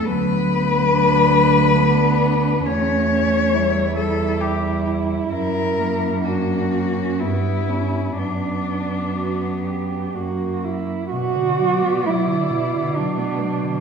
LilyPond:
<<
  \new Staff \with { instrumentName = "Cello" } { \time 3/4 \key b \minor \tempo 4 = 66 b'2. | cis''4. a'8 g'8 r8 | ais'4 fis'4 e'4 | d'2 r4 |
d''2. | }
  \new Staff \with { instrumentName = "Cello" } { \time 3/4 \key b \minor b4 d'4 d'4 | cis'8 cis'8 e'2~ | e'4 d'8 cis'8 b4 | d'4 fis'8 g'8 fis'8 e'8 |
fis'4 e'4 d'4 | }
  \new Staff \with { instrumentName = "Cello" } { \clef bass \time 3/4 \key b \minor fis8 fis4. b4 | a4 g8 g4. | fis8 ais4. b8 cis'8 | b2 ais8. r16 |
b,16 d16 fis16 b16 fis16 d16 b,16 d16 fis16 b16 fis16 d16 | }
  \new Staff \with { instrumentName = "Cello" } { \clef bass \time 3/4 \key b \minor d,2. | e,2. | fis,2 g,4 | fis,2 fis,4 |
b,2. | }
>>